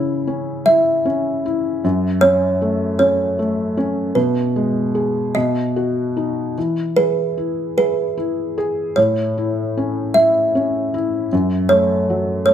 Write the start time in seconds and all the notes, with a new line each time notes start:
Already playing: C#3 E4 C#5
0.27 C#4
0.66 E4 E5
1.05 C#4
1.46 E4
1.84 F#2
2.21 C#4 C#5
2.62 A3
2.99 C#4 C#5
3.39 A3
3.77 C#4
4.15 B2 B4
4.56 G#3
4.95 G#4
5.35 B2 D#5
5.76 F#4
6.17 D#4
6.58 E3
6.96 G#4 B4
7.38 E4
7.77 G#4 B4
8.18 E4
8.58 G#4
8.96 A2 C#5
9.38 E4
9.77 C#4
10.14 E4 E5
10.55 C#4
10.94 E4
11.33 F#2
11.69 A3 C#5
12.10 F#3
12.46 A3 C#5